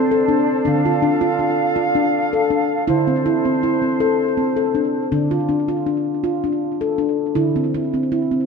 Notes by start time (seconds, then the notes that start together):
Already playing: C4 D4 A4 C5
0.11 A4
0.28 D4
0.65 D3 D4 F5
0.85 F4
1.02 D4
1.21 F4
1.39 D4
1.76 F4
1.95 D4
2.33 A4
2.50 D4
2.88 D3 E4 C5
3.07 C4
3.26 E4
3.45 C4
3.63 E4
3.82 C4
4.00 A4
4.37 C4
4.57 A4
4.75 D4
5.12 D3 D4
5.31 F4
5.49 D4
5.68 F4
5.86 D4
6.24 F4
6.44 D4
6.81 A4
6.98 D4
7.35 D3 E4
7.56 C4
7.74 E4
7.94 C4
8.12 E4
8.31 C4